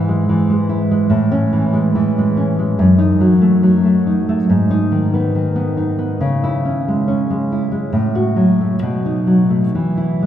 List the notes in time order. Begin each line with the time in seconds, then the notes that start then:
Already playing: G#2 E3
0.09 G#3
0.29 E3
0.50 G#3
0.69 E4
0.91 G#3
1.10 A2
1.32 C#4
1.53 E3
1.74 G#3
1.95 E3
2.18 G#3
2.37 C#4
2.59 G#3
2.79 F#2
2.98 D#4
3.21 F#3
3.42 A3
3.63 F#3
3.85 A3
4.07 D#4
4.29 A3
4.50 G#2
4.71 D#4
4.92 D#3
5.14 B3
5.35 D#3
5.56 B3
5.77 D#4
5.98 B3
6.21 C#3
6.44 E4
6.65 C#4
6.88 G#3
7.08 C#4
7.30 G#3
7.52 E4
7.72 G#3
7.93 A2
8.15 F#4
8.36 F#3
8.61 A3
8.83 B2
9.06 D#4
9.27 F#3
9.50 A3
9.75 E3
9.97 E4
10.22 G#3